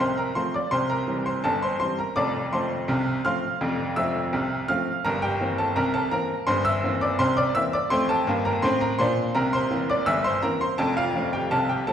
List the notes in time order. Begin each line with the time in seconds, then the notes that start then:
0.00 C2 C3 C5 C6
0.18 A#4 A#5
0.35 F3 A3 C4 C5 C6
0.54 D5 D6
0.71 C2 C3 C5 C6
0.90 A#4 A#5
1.08 E3 G3 C4
1.26 C5 C6
1.44 G1 G2 A4 A5
1.63 C5 C6
1.80 E3 G3 C4 C5 C6
1.99 A#4 A#5
2.16 F1 F2 D5 A5 D6
2.53 F3 A3 C4 C5 A5 C6
2.88 C2 C3
3.25 F3 A3 C4 F5 C6 F6
3.61 F1 F2
3.96 F3 A3 C4 E5 E6
4.33 C2 C3
4.68 F3 A3 C4 F5 F6
5.05 G1 G2 A#4 A#5
5.22 G4 G5
5.41 E3 A#3 C4
5.58 A4 A5
5.76 C2 C3 A#4 A#5
5.94 A4 A5
6.11 E3 A#3 C4 A#4 A#5
6.47 G1 G2 C5 C6
6.65 E5 E6
6.84 E3 A#3 C4
7.01 D5 D6
7.19 C2 C3 C5 C6
7.37 D5 D6
7.55 E3 A#3 C4 E5 E6
7.73 D5 D6
7.90 F2 A3 C5 C6
8.09 A4 A5
8.27 G2 A#3
8.45 A#4 A#5
8.62 A2 C4 C5 C6
8.81 A#4 A#5
8.99 A#2 D4 C5 C6
9.35 C2 C3 A#4 A#5
9.53 C5 C6
9.71 E3 A#3 C4
9.90 D5 D6
10.06 G1 G2 E5 E6
10.24 C5 C6
10.42 E3 A#3 C4 A#4 A#5
10.61 C5 C6
10.78 F1 F2 A4 A5
10.97 F4 F5
11.15 F3 A3 C4
11.33 G4 G5
11.51 C2 C3 A4 A5
11.69 G4 G5
11.87 F3 A3 C4 A4 A5